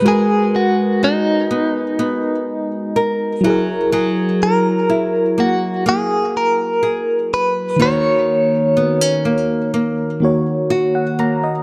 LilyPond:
<<
  \new Staff \with { instrumentName = "Clean electric guitar" } { \time 4/4 \key fis \mixolydian \tempo 4 = 62 gis'8 fis'8 dis'2~ dis'8 r8 | r8 ais'4 fis'8 gis'8 ais'4 b'8 | cis''2 r2 | }
  \new Staff \with { instrumentName = "FM electric piano" } { \time 4/4 \key fis \mixolydian << { r1 | r1 | r2. r16 fis''16 ais''16 dis''16 | } \\ { <gis fis' ais' b'>2.~ <gis fis' ais' b'>8 <fis e' gis' ais'>8~ | <fis e' gis' ais'>2.~ <fis e' gis' ais'>8 r8 | <dis ais fis' cis''>2~ <dis ais fis' cis''>8 <dis ais fis' cis''>4. | } >> }
  \new Staff \with { instrumentName = "Nylon-string guitar" } { \time 4/4 \key fis \mixolydian <gis ais'>4 fis'8 b8 b4 ais'8 fis8 | <fis gis'>4 e'8 ais8 ais4 gis'4 | <dis fis'>4 b16 cis'16 ais8 ais4 fis'8 ais8 | }
>>